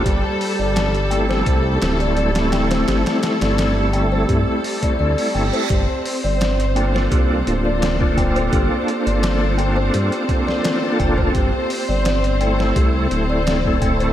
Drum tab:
HH |x-o-xxx-x-xxxxxx|xxxxx-x-x-ox-o-x|x-o-xxx-x-x-x-xx|x-xxx-x-xxx-x-x-|
SD |----o--o--o--ooo|ooooo-----------|----o--o----o---|----o------oo---|
BD |o-------o-------|--------o--o----|o-------o----oo-|o---------o---oo|

HH |x-o-xxx-x-x-x-xx|
SD |----o--o----o---|
BD |o-------o----oo-|